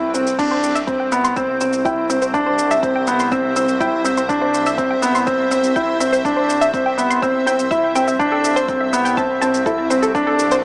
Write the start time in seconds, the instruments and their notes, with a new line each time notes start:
Already playing: double bass section C2, ambient pad C4 A4 B4 G5
0.14 grand piano C4, shaker
0.27 shaker
0.39 double bass section C2, grand piano D4, kick, crash, shaker
0.46 ambient pad C5
0.51 synth arpeggio sound C5
0.64 shaker
0.75 synth arpeggio sound E5, shaker
0.85 grand piano C4, ambient pad E5, kick, shaker
1.00 synth arpeggio sound G5
1.12 grand piano B3, shaker
1.24 synth arpeggio sound C6, shaker
1.36 grand piano C4, synth arpeggio sound E6, kick, shaker
1.61 grand piano C4, synth arpeggio sound E6, shaker
1.73 shaker
1.85 grand piano E4, synth arpeggio sound G5, kick, shaker
2.10 grand piano C4, synth arpeggio sound E5, shaker
2.22 synth arpeggio sound C5, shaker
2.34 grand piano D4, kick, shaker
2.46 synth arpeggio sound C5
2.59 shaker
2.71 synth arpeggio sound E5, shaker
2.83 grand piano C4, kick, shaker
2.96 synth arpeggio sound G5
3.07 grand piano B3, shaker
3.20 synth arpeggio sound C6, shaker
3.32 grand piano C4, synth arpeggio sound E6, kick, shaker
3.56 grand piano C4, synth arpeggio sound E6, shaker
3.69 shaker
3.80 grand piano E4, synth arpeggio sound G5, kick, shaker
4.04 grand piano C4, synth arpeggio sound E5, shaker
4.17 synth arpeggio sound C5, shaker
4.29 grand piano D4, kick, shaker
4.42 synth arpeggio sound C5
4.54 shaker
4.66 synth arpeggio sound E5, shaker
4.78 grand piano C4, kick, shaker
4.91 synth arpeggio sound G5
5.02 grand piano B3, shaker
5.15 synth arpeggio sound C6, shaker
5.27 grand piano C4, synth arpeggio sound E6, kick, shaker
5.51 grand piano C4, synth arpeggio sound E6, shaker
5.64 shaker
5.76 grand piano E4, synth arpeggio sound G5, kick, shaker
6.00 grand piano C4, synth arpeggio sound E5, shaker
6.13 synth arpeggio sound C5, shaker
6.25 grand piano D4, kick, shaker
6.37 synth arpeggio sound C5
6.50 shaker
6.61 synth arpeggio sound E5, shaker
6.74 grand piano C4, kick, shaker
6.86 synth arpeggio sound G5
6.98 grand piano B3, shaker
7.10 synth arpeggio sound C6, shaker
7.22 grand piano C4, synth arpeggio sound E6, kick, shaker
7.46 grand piano C4, synth arpeggio sound G5, shaker
7.59 shaker
7.71 grand piano E4, synth arpeggio sound E5, kick, shaker
7.95 grand piano C4, synth arpeggio sound G5, shaker
8.08 synth arpeggio sound E5, shaker
8.19 double bass section C2, ambient pad C4, grand piano D4, kick, shaker
8.32 synth arpeggio sound A4
8.44 shaker
8.56 synth arpeggio sound C5, ambient pad G5, shaker
8.62 ambient pad A4
8.68 grand piano C4, kick, shaker
8.81 synth arpeggio sound E5
8.93 grand piano B3, shaker
9.03 ambient pad B4, synth arpeggio sound G5, shaker
9.17 grand piano C4, synth arpeggio sound A5, kick, shaker
9.41 grand piano C4, synth arpeggio sound A5, shaker
9.54 shaker
9.66 grand piano E4, synth arpeggio sound A4, kick, shaker
9.90 grand piano C4, synth arpeggio sound C5, shaker
10.03 synth arpeggio sound A4, shaker
10.15 grand piano D4, kick, shaker
10.27 synth arpeggio sound A4
10.39 shaker
10.51 synth arpeggio sound C5, shaker